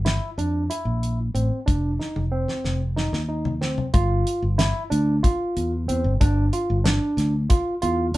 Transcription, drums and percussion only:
0.06 snare, closed hi-hat
0.39 closed hi-hat
0.71 closed hi-hat
1.03 closed hi-hat
1.35 closed hi-hat
1.68 kick, closed hi-hat
2.01 snare
2.16 high tom
2.48 snare
2.64 snare
2.97 snare
3.13 snare
3.45 floor tom
3.62 snare
3.78 floor tom
3.94 kick, closed hi-hat
4.27 closed hi-hat
4.59 snare, closed hi-hat
4.92 closed hi-hat
5.24 kick, closed hi-hat
5.57 closed hi-hat
5.89 closed hi-hat
6.21 kick, closed hi-hat
6.53 closed hi-hat
6.86 snare, closed hi-hat
7.18 snare, closed hi-hat
7.50 kick, closed hi-hat
7.82 closed hi-hat
8.14 closed hi-hat

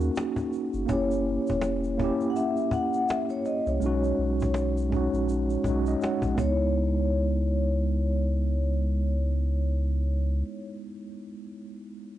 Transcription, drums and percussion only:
0.01 cajon slap, shaker
0.16 cajon slap, shaker
0.36 cajon bass, shaker
0.53 cajon slap, shaker
0.73 cajon slap, shaker
0.89 cajon bass, shaker
1.10 cajon slap, shaker
1.29 cajon slap
1.47 cajon bass, shaker
1.61 cajon slap, shaker
1.84 cajon slap, shaker
1.99 cajon bass
2.20 cajon slap, shaker
2.36 cajon slap, shaker
2.57 cajon slap, shaker
2.71 cajon bass, shaker
2.93 cajon slap, shaker
3.08 cajon slap, shaker
3.29 cajon slap, shaker
3.45 cajon slap, shaker
3.66 cajon slap, shaker
3.81 cajon slap, shaker
4.03 cajon slap, shaker
4.22 cajon slap
4.40 cajon bass, shaker
4.54 cajon slap, shaker
4.77 cajon slap, shaker
4.92 cajon bass
5.13 cajon slap, shaker
5.29 cajon slap, shaker
5.50 shaker
5.54 cajon slap
5.64 cajon bass, shaker
5.86 cajon slap, shaker
6.01 cajon slap, shaker
6.22 cajon bass, shaker
6.38 cajon bass, shaker

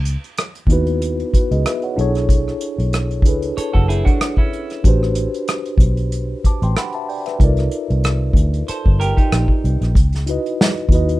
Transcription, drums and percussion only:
0.05 closed hi-hat
0.24 closed hi-hat
0.38 cross-stick, closed hi-hat
0.55 closed hi-hat
0.67 kick, closed hi-hat
0.87 closed hi-hat
1.02 closed hi-hat
1.20 closed hi-hat
1.34 kick, closed hi-hat
1.52 closed hi-hat
1.66 cross-stick, closed hi-hat
1.82 closed hi-hat
1.99 closed hi-hat
2.15 cross-stick, closed hi-hat
2.29 kick, closed hi-hat
2.48 cross-stick
2.61 closed hi-hat
2.80 closed hi-hat
2.93 cross-stick, closed hi-hat
3.11 closed hi-hat
3.22 kick, closed hi-hat
3.42 closed hi-hat
3.58 closed hi-hat
3.75 kick
3.90 closed hi-hat
4.06 kick, closed hi-hat
4.21 cross-stick, closed hi-hat
4.37 kick
4.53 closed hi-hat
4.70 cross-stick, closed hi-hat
4.84 kick, closed hi-hat
5.03 cross-stick
5.15 closed hi-hat
5.34 closed hi-hat
5.48 cross-stick, closed hi-hat
5.66 closed hi-hat
5.78 kick, closed hi-hat
5.97 closed hi-hat
6.12 closed hi-hat
6.44 kick, closed hi-hat
6.62 closed hi-hat
6.76 cross-stick, closed hi-hat
6.93 closed hi-hat
7.09 open hi-hat
7.26 cross-stick, closed hi-hat
7.40 kick, closed hi-hat
7.57 cross-stick, closed hi-hat
7.71 closed hi-hat
7.90 closed hi-hat
8.04 cross-stick, closed hi-hat
8.33 kick, closed hi-hat
8.54 closed hi-hat
8.68 closed hi-hat
8.86 kick
9.01 closed hi-hat
9.17 kick, closed hi-hat
9.32 cross-stick, closed hi-hat
9.48 kick
9.65 closed hi-hat
9.82 cross-stick, closed hi-hat
9.95 kick, closed hi-hat
10.13 snare, closed hi-hat
10.27 closed hi-hat
10.46 closed hi-hat
10.61 snare
10.77 closed hi-hat
10.89 kick, closed hi-hat
11.09 closed hi-hat

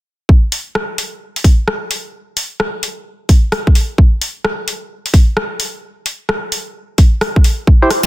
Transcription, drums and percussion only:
0.29 kick
0.52 open hi-hat
0.75 cross-stick
0.98 open hi-hat
1.36 open hi-hat
1.44 kick, open hi-hat
1.68 cross-stick
1.91 open hi-hat
2.37 open hi-hat
2.60 cross-stick
2.83 open hi-hat
3.29 kick, open hi-hat
3.52 cross-stick, open hi-hat
3.67 kick
3.75 open hi-hat
3.98 kick
4.22 open hi-hat
4.45 cross-stick
4.68 open hi-hat
5.06 open hi-hat
5.14 kick, open hi-hat
5.37 cross-stick
5.60 open hi-hat
6.06 open hi-hat
6.29 cross-stick
6.52 open hi-hat
6.98 kick, open hi-hat
7.21 cross-stick, open hi-hat
7.36 kick
7.44 open hi-hat
7.67 kick
7.91 cross-stick, open hi-hat

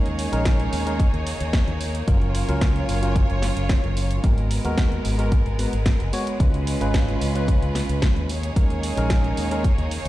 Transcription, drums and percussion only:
0.06 closed hi-hat
0.19 open hi-hat
0.33 closed hi-hat
0.45 kick, snare, closed hi-hat
0.60 closed hi-hat
0.73 open hi-hat
0.87 closed hi-hat
1.00 kick, closed hi-hat
1.14 closed hi-hat
1.27 open hi-hat
1.40 closed hi-hat
1.53 kick, snare, closed hi-hat
1.68 closed hi-hat
1.81 open hi-hat
1.95 closed hi-hat
2.08 kick, closed hi-hat
2.22 closed hi-hat
2.35 open hi-hat
2.49 closed hi-hat
2.61 kick, snare, closed hi-hat
2.76 closed hi-hat
2.89 open hi-hat
3.03 closed hi-hat
3.16 kick, closed hi-hat
3.30 closed hi-hat
3.42 snare, open hi-hat
3.57 closed hi-hat
3.69 kick, snare, closed hi-hat
3.84 closed hi-hat
3.97 open hi-hat
4.11 closed hi-hat
4.24 kick, closed hi-hat
4.38 closed hi-hat
4.51 open hi-hat
4.65 closed hi-hat
4.78 kick, snare, closed hi-hat
4.92 closed hi-hat
5.05 open hi-hat
5.19 closed hi-hat
5.32 kick, closed hi-hat
5.46 closed hi-hat
5.59 open hi-hat
5.73 closed hi-hat
5.86 kick, snare, closed hi-hat
6.00 closed hi-hat
6.13 open hi-hat
6.27 closed hi-hat
6.40 kick, closed hi-hat
6.54 closed hi-hat
6.67 open hi-hat
6.81 closed hi-hat
6.94 kick, snare, closed hi-hat
7.09 closed hi-hat
7.21 open hi-hat
7.36 closed hi-hat
7.48 kick, closed hi-hat
7.62 closed hi-hat
7.75 snare, open hi-hat
7.89 closed hi-hat
8.02 kick, snare, closed hi-hat
8.16 closed hi-hat
8.29 open hi-hat
8.43 closed hi-hat
8.56 kick, closed hi-hat
8.70 closed hi-hat
8.83 open hi-hat
8.97 closed hi-hat
9.10 kick, snare, closed hi-hat
9.24 closed hi-hat
9.37 open hi-hat
9.51 closed hi-hat
9.64 kick, closed hi-hat
9.78 closed hi-hat
9.91 open hi-hat

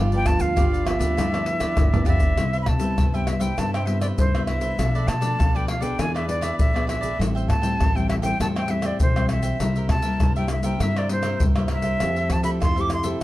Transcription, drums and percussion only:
0.12 pandeiro, shaker
0.26 pandeiro, tamborim, shaker, surdo
0.40 pandeiro, shaker
0.57 pandeiro, tamborim, shaker, surdo
0.74 pandeiro, shaker
0.87 pandeiro, tamborim
1.01 pandeiro, shaker
1.18 pandeiro, tamborim, shaker, surdo
1.34 pandeiro, tamborim, shaker
1.46 pandeiro
1.60 pandeiro, tamborim, shaker
1.77 pandeiro, tamborim, shaker, surdo
1.94 surdo, pandeiro, shaker
2.06 pandeiro, surdo
2.20 pandeiro, shaker, surdo
2.37 pandeiro, tamborim, shaker, surdo
2.53 pandeiro, shaker
2.66 pandeiro, tamborim, surdo
2.80 pandeiro, shaker
2.98 pandeiro, tamborim, shaker, surdo
3.14 pandeiro, shaker
3.27 pandeiro, tamborim
3.41 pandeiro, shaker
3.58 pandeiro, tamborim, shaker, surdo
3.74 pandeiro, tamborim, shaker
3.87 pandeiro
4.01 pandeiro, tamborim, shaker
4.18 pandeiro, shaker, surdo
4.35 pandeiro, tamborim, shaker
4.47 pandeiro, tamborim
4.61 pandeiro, shaker
4.79 pandeiro, tamborim, shaker, surdo
4.95 pandeiro, shaker
5.08 pandeiro, tamborim, shaker
5.22 pandeiro, shaker
5.40 pandeiro, tamborim, shaker, surdo
5.56 pandeiro, shaker
5.68 pandeiro, tamborim
5.82 pandeiro, shaker
5.99 pandeiro, tamborim, shaker, surdo
6.16 pandeiro, tamborim, shaker
6.29 pandeiro, shaker
6.42 pandeiro, tamborim, shaker
6.59 pandeiro, shaker, surdo
6.76 pandeiro, tamborim, shaker
6.89 pandeiro, tamborim
7.03 pandeiro, shaker
7.21 pandeiro, tamborim, shaker, surdo
7.37 pandeiro, shaker
7.50 pandeiro, tamborim, surdo
7.63 pandeiro, shaker
7.80 pandeiro, tamborim, shaker, surdo
7.97 pandeiro, shaker
8.10 pandeiro, tamborim
8.23 pandeiro, shaker
8.40 pandeiro, tamborim, shaker, surdo
8.56 pandeiro, tamborim, shaker
8.68 pandeiro
8.82 pandeiro, tamborim, shaker
9.00 pandeiro, shaker, surdo
9.16 pandeiro, tamborim, shaker
9.29 pandeiro, tamborim, shaker
9.43 pandeiro, shaker
9.60 pandeiro, tamborim, shaker, surdo
9.76 pandeiro, shaker
9.89 pandeiro, tamborim, surdo
10.02 pandeiro, shaker
10.20 pandeiro, tamborim, shaker, surdo
10.36 pandeiro, shaker
10.48 pandeiro, tamborim, shaker
10.63 pandeiro, shaker
10.80 pandeiro, tamborim, shaker, surdo
10.96 pandeiro, tamborim, shaker
11.09 pandeiro
11.23 pandeiro, tamborim, shaker
11.40 pandeiro, shaker, surdo
11.56 pandeiro, tamborim, shaker
11.68 pandeiro, tamborim
11.82 pandeiro, shaker
12.00 pandeiro, tamborim, shaker, surdo
12.16 pandeiro, shaker
12.30 pandeiro, tamborim, surdo
12.44 pandeiro, shaker
12.62 pandeiro, tamborim, shaker, surdo
12.78 pandeiro, shaker
12.90 pandeiro, tamborim, shaker
13.04 pandeiro, shaker

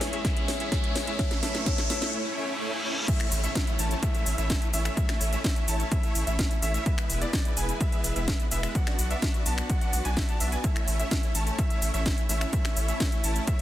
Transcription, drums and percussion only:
0.01 snare, open hi-hat
0.13 closed hi-hat
0.25 kick, snare, closed hi-hat
0.37 closed hi-hat
0.48 snare, open hi-hat
0.60 closed hi-hat
0.72 kick, snare, closed hi-hat
0.84 closed hi-hat
0.96 snare, open hi-hat
1.07 closed hi-hat
1.19 kick, snare, closed hi-hat
1.31 snare, closed hi-hat
1.43 snare, open hi-hat
1.55 snare, closed hi-hat
1.66 kick, snare, closed hi-hat
1.78 snare, closed hi-hat
1.90 snare, open hi-hat
2.02 snare, closed hi-hat
3.08 kick, closed hi-hat, crash, shaker
3.20 finger snap, closed hi-hat, shaker
3.32 open hi-hat, shaker
3.44 closed hi-hat, shaker
3.55 kick, snare, closed hi-hat, shaker
3.67 closed hi-hat, shaker
3.79 open hi-hat, shaker
3.91 closed hi-hat, shaker
4.03 kick, closed hi-hat, shaker
4.15 closed hi-hat, shaker
4.26 open hi-hat, shaker
4.38 closed hi-hat, shaker
4.50 kick, snare, closed hi-hat, shaker
4.62 closed hi-hat, shaker
4.74 open hi-hat, shaker
4.85 finger snap, closed hi-hat, shaker
4.97 kick, closed hi-hat, shaker
5.09 finger snap, snare, closed hi-hat, shaker
5.21 open hi-hat, shaker
5.33 closed hi-hat, shaker
5.44 kick, snare, closed hi-hat, shaker
5.56 closed hi-hat, shaker
5.68 open hi-hat, shaker
5.80 closed hi-hat, shaker
5.92 kick, closed hi-hat, shaker
6.03 closed hi-hat, shaker
6.15 open hi-hat, shaker
6.27 closed hi-hat, shaker
6.39 kick, snare, closed hi-hat, shaker
6.51 closed hi-hat, shaker
6.62 open hi-hat, shaker
6.74 closed hi-hat, shaker
6.86 kick, closed hi-hat, shaker
6.98 finger snap, closed hi-hat, shaker
7.10 open hi-hat, shaker
7.22 closed hi-hat, shaker
7.33 kick, snare, closed hi-hat, shaker
7.45 closed hi-hat, shaker
7.57 open hi-hat, shaker
7.69 closed hi-hat, shaker
7.81 kick, closed hi-hat, shaker
7.92 closed hi-hat, shaker
8.04 open hi-hat, shaker
8.16 closed hi-hat, shaker
8.28 kick, snare, closed hi-hat, shaker
8.40 closed hi-hat, shaker
8.51 open hi-hat, shaker
8.63 finger snap, closed hi-hat, shaker
8.75 kick, closed hi-hat, shaker
8.87 finger snap, snare, closed hi-hat, shaker
8.99 open hi-hat, shaker
9.11 closed hi-hat, shaker
9.22 kick, snare, closed hi-hat, shaker
9.34 closed hi-hat, shaker
9.46 open hi-hat, shaker
9.58 finger snap, closed hi-hat, shaker
9.70 kick, closed hi-hat, shaker
9.81 closed hi-hat, shaker
9.93 open hi-hat, shaker
10.05 closed hi-hat, shaker
10.17 kick, snare, closed hi-hat, shaker
10.29 closed hi-hat, shaker
10.40 open hi-hat, shaker
10.52 closed hi-hat, shaker
10.64 kick, closed hi-hat, shaker
10.76 finger snap, closed hi-hat, shaker
10.88 open hi-hat, shaker
11.00 closed hi-hat, shaker
11.11 kick, snare, closed hi-hat, shaker
11.23 closed hi-hat, shaker
11.35 open hi-hat, shaker
11.47 closed hi-hat, shaker
11.59 kick, closed hi-hat, shaker
11.70 closed hi-hat, shaker
11.82 open hi-hat, shaker
11.94 closed hi-hat, shaker
12.06 kick, snare, closed hi-hat, shaker
12.18 closed hi-hat, shaker
12.29 open hi-hat, shaker
12.41 finger snap, closed hi-hat, shaker
12.53 kick, closed hi-hat, shaker
12.65 finger snap, snare, closed hi-hat, shaker
12.77 open hi-hat, shaker
12.88 closed hi-hat, shaker
13.00 kick, snare, closed hi-hat, shaker
13.12 closed hi-hat, shaker
13.24 open hi-hat, shaker
13.36 closed hi-hat, shaker
13.47 kick, closed hi-hat, shaker

